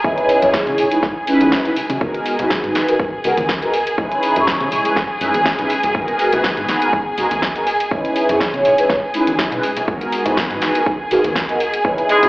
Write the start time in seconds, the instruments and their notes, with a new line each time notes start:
Already playing: violin section G#4 G#5
0.04 analog synth bass C#2, analog polysynth G#3 C#4 D#4 E4 B4, kick, tambourine, high conga
0.18 closed hi-hat, tambourine
0.29 open hi-hat, tambourine
0.42 analog synth bass F#2, analog polysynth G#3 C#4 D#4 E4 C#5, closed hi-hat, tambourine, low conga
0.53 kick, snare, tambourine
0.67 analog synth bass C#3, closed hi-hat, tambourine, high conga
0.78 analog synth bass B1, open hi-hat, tambourine
0.91 analog polysynth G#3 C#4 D#4 E4 B4, closed hi-hat, tambourine
1.03 analog synth bass G#2, kick, snare
1.27 analog polysynth G#3 C#4 D#4 E4 B4, open hi-hat, tambourine
1.40 closed hi-hat, tambourine, high conga
1.52 kick, snare, tambourine, low conga
1.65 analog polysynth G#3 C#4 D#4 E4 B4, closed hi-hat, tambourine
1.76 analog synth bass C#3, open hi-hat, tambourine
1.89 analog synth bass C#3, closed hi-hat, tambourine, low conga
2.01 analog synth bass G#1, analog polysynth G#3 B3 D#4 F#4 A#4, violin section G#4 G#5, kick, tambourine, high conga
2.14 closed hi-hat, tambourine
2.26 open hi-hat, tambourine
2.38 analog synth bass C#2, analog polysynth G#3 B3 D#4 F#4 B4, closed hi-hat, tambourine, low conga
2.50 kick, snare, tambourine
2.64 analog synth bass G#2, closed hi-hat, high conga
2.75 analog synth bass F#1, snare, open hi-hat, tambourine
2.88 analog polysynth G#3 B3 D#4 F#4 A#4, closed hi-hat, tambourine
3.00 analog synth bass G#1, kick, tambourine
3.24 analog synth bass C#2, analog polysynth G#3 B3 D#4 F#4 A#4, open hi-hat, tambourine
3.37 analog synth bass D#2, closed hi-hat, tambourine, high conga
3.49 kick, snare, tambourine
3.62 analog polysynth G#3 B3 D#4 F#4 A#4, closed hi-hat
3.73 analog synth bass C#2, open hi-hat, tambourine
3.86 closed hi-hat, tambourine
3.98 analog synth bass C#2, analog polysynth G#3 C#4 D#4 E4 B4, kick, tambourine, high conga
4.11 closed hi-hat, tambourine
4.22 open hi-hat, tambourine
4.35 analog synth bass F#2, analog polysynth G#3 C#4 D#4 E4 C#5, closed hi-hat, tambourine, low conga
4.47 kick, snare, tambourine
4.60 analog synth bass C#3, closed hi-hat, tambourine, high conga
4.71 analog synth bass B1, open hi-hat, tambourine
4.85 analog polysynth G#3 C#4 D#4 E4 B4, closed hi-hat, tambourine
4.96 analog synth bass G#2, kick, snare
5.20 analog synth bass F#2, analog polysynth G#3 C#4 D#4 E4 B4, open hi-hat, tambourine
5.34 closed hi-hat, tambourine, high conga
5.45 kick, snare, tambourine, low conga
5.58 analog synth bass C#2, analog polysynth G#3 C#4 D#4 E4 B4, closed hi-hat, tambourine
5.70 analog synth bass C#2, open hi-hat, tambourine
5.83 analog synth bass C#2, closed hi-hat, tambourine, low conga
5.94 analog synth bass G#1, analog polysynth G#3 B3 D#4 F#4 A#4, kick, tambourine, high conga
6.08 closed hi-hat, tambourine
6.19 open hi-hat, tambourine
6.32 analog synth bass C#2, analog polysynth G#3 B3 D#4 F#4 B4, closed hi-hat, tambourine, low conga
6.44 kick, snare, tambourine
6.57 analog synth bass G#2, closed hi-hat, high conga
6.69 analog synth bass F#1, snare, open hi-hat, tambourine
6.81 analog polysynth G#3 B3 D#4 F#4 A#4, closed hi-hat, tambourine
6.93 analog synth bass G#1, kick, tambourine
7.17 analog synth bass C#2, analog polysynth G#3 B3 D#4 F#4 A#4, open hi-hat, tambourine
7.31 analog synth bass D#2, closed hi-hat, tambourine, high conga
7.42 kick, snare, tambourine
7.55 analog polysynth G#3 B3 D#4 F#4 A#4, closed hi-hat
7.67 analog synth bass C#2, open hi-hat, tambourine
7.80 closed hi-hat, tambourine
7.91 analog synth bass C#2, analog polysynth G#3 C#4 D#4 E4 B4, kick, tambourine, high conga
8.04 closed hi-hat, tambourine
8.16 open hi-hat, tambourine
8.29 analog synth bass F#2, analog polysynth G#3 C#4 D#4 E4 C#5, closed hi-hat, tambourine, low conga
8.40 kick, snare, tambourine
8.53 analog synth bass C#3, closed hi-hat, tambourine, high conga
8.65 analog synth bass B1, open hi-hat, tambourine
8.78 analog polysynth G#3 C#4 D#4 E4 B4, closed hi-hat, tambourine
8.90 analog synth bass G#2, kick, snare
9.04 tambourine
9.14 analog polysynth G#3 C#4 D#4 E4 B4, open hi-hat, tambourine
9.27 analog synth bass C#2, closed hi-hat, tambourine, high conga
9.39 analog synth bass C#2, kick, snare, tambourine, low conga
9.52 analog synth bass B2, analog polysynth G#3 C#4 D#4 E4 B4, closed hi-hat, tambourine
9.63 open hi-hat, tambourine
9.77 closed hi-hat, tambourine, low conga
9.88 analog synth bass G#1, analog polysynth G#3 B3 D#4 F#4 A#4, violin section G#4 G#5, kick, tambourine, high conga
10.01 closed hi-hat, tambourine
10.11 open hi-hat, tambourine
10.25 analog synth bass C#2, analog polysynth G#3 B3 D#4 F#4 B4, closed hi-hat, tambourine, low conga
10.37 kick, snare, tambourine
10.50 analog synth bass G#2, closed hi-hat, high conga
10.62 analog synth bass F#1, snare, open hi-hat, tambourine
10.75 analog polysynth G#3 B3 D#4 F#4 A#4, closed hi-hat, tambourine
10.86 analog synth bass G#1, kick
11.10 analog synth bass C#2, analog polysynth G#3 B3 D#4 F#4 A#4, open hi-hat, tambourine
11.24 analog synth bass D#2, closed hi-hat, tambourine, high conga
11.35 kick, snare, tambourine
11.48 analog polysynth G#3 B3 D#4 F#4 A#4, closed hi-hat
11.59 analog synth bass C#2, open hi-hat, tambourine
11.74 closed hi-hat, tambourine
11.84 analog synth bass C#2, analog polysynth G#3 C#4 D#4 E4 B4, kick, tambourine, high conga
11.98 closed hi-hat, tambourine
12.09 horn section G#3 G#4, open hi-hat, tambourine
12.22 analog synth bass F#2, analog polysynth G#3 C#4 D#4 E4 C#5, closed hi-hat, tambourine, low conga